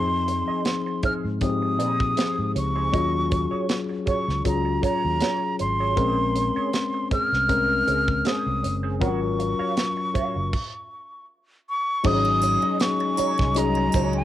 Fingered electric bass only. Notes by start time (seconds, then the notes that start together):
Already playing: F2
0.49 muted fingered electric bass stroke
1.04 muted fingered electric bass stroke
1.25 G#2
1.80 A#2
2.39 G#2
2.56 C#2
2.94 D#2
3.52 muted fingered electric bass stroke
4.08 muted fingered electric bass stroke
4.28 C#2
4.46 C#2
5.05 D#2
5.60 G#1
5.97 A#1
6.57 muted fingered electric bass stroke
7.12 muted fingered electric bass stroke
7.33 C2
7.88 C#2
8.46 C2
8.64 F#1
9.02 G#1
9.60 muted fingered electric bass stroke
10.15 muted fingered electric bass stroke
10.36 F#1
12.05 G#1
13.19 muted fingered electric bass stroke
13.40 C2
13.94 C#2